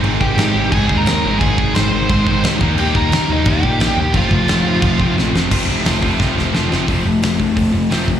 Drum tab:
CC |x-x-x-x-|x-x-x-x-|x-x-x-x-|x-x-x---|
HH |--------|--------|--------|--------|
SD |--o---o-|--o---o-|--o---o-|--o---oo|
BD |-o--oo--|oo--oo-o|-o--oo--|oo--oo--|

CC |x-------|--------|
HH |--o-----|o-o-o-o-|
SD |--o-oooo|--o---o-|
BD |o--oo---|o--oo--o|